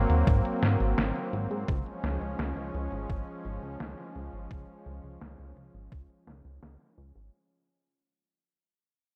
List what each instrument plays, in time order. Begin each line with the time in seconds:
Already playing: analog synth pad F#3 A#3 C4
0.10 analog synth bass D#2, closed hi-hat
0.27 analog synth bass G#2, kick, closed hi-hat
0.45 closed hi-hat
0.63 analog synth bass G#2, snare, closed hi-hat
0.80 analog synth bass G#1, closed hi-hat
0.98 analog synth bass G#1, snare, closed hi-hat
1.16 closed hi-hat
1.33 analog synth bass G#1, closed hi-hat
1.51 analog synth bass G#2, closed hi-hat
1.68 analog synth bass C#2, analog synth pad F3 G#3 C#4, kick, closed hi-hat
1.86 closed hi-hat
2.04 analog synth bass C#2, snare, closed hi-hat
2.21 analog synth bass C#2, closed hi-hat
2.39 analog synth bass C#2, snare, closed hi-hat
2.57 analog synth bass C#2, closed hi-hat
2.74 analog synth bass C#2, closed hi-hat
2.92 analog synth bass G#1, closed hi-hat
3.10 analog synth bass G#1, kick, closed hi-hat
3.27 closed hi-hat
3.45 analog synth bass G#1, closed hi-hat
3.63 analog synth bass C#2, closed hi-hat
3.80 analog synth bass C#2, snare, closed hi-hat
3.98 closed hi-hat
4.16 analog synth bass C#2, closed hi-hat
4.33 analog synth bass G#1, closed hi-hat
4.51 analog synth bass C#2, kick, closed hi-hat
4.69 closed hi-hat
4.86 analog synth bass C#2, closed hi-hat
5.04 analog synth bass C#2, closed hi-hat
5.21 analog synth bass C#2, snare, closed hi-hat
5.39 analog synth bass C#2, closed hi-hat
5.57 analog synth bass C#2, closed hi-hat
5.74 analog synth bass G#1, closed hi-hat
5.92 analog synth bass C#2, kick, closed hi-hat
6.10 closed hi-hat
6.27 analog synth bass C#2, snare, closed hi-hat
6.45 analog synth bass C#2, closed hi-hat
6.62 analog synth bass C#2, snare, closed hi-hat
6.80 closed hi-hat
6.98 analog synth bass C#2, closed hi-hat
7.16 analog synth bass G#1, closed hi-hat